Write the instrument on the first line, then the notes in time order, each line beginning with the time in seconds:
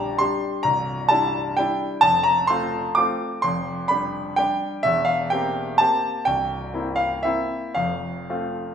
grand piano
Already playing: A#0 A#1 G3 D4 G4 G5 A5 A#5
0.18 G3 D4 G4 C6
0.63 C1 C2 A#5
1.08 G3 D4 E4 A5
1.57 G3 D4 E4 G5
2.01 F1 F2 A5
2.23 A#5
2.47 A3 C4 F4 C6
2.95 A3 C4 F4 D6
3.42 F1 F2 C6
3.88 G3 D4 G4 B5
4.36 G3 D4 G4 G5
4.83 E1 E2 E5
5.05 F5
5.30 A#3 C4 G4 G5
5.78 A#3 C4 G4 A5
6.25 C1 C2 G5
6.74 A#3 C4 E4
6.96 F5
7.23 A#3 C4 E4 E5
7.75 F1 F2 F5
8.30 A3 C4 F4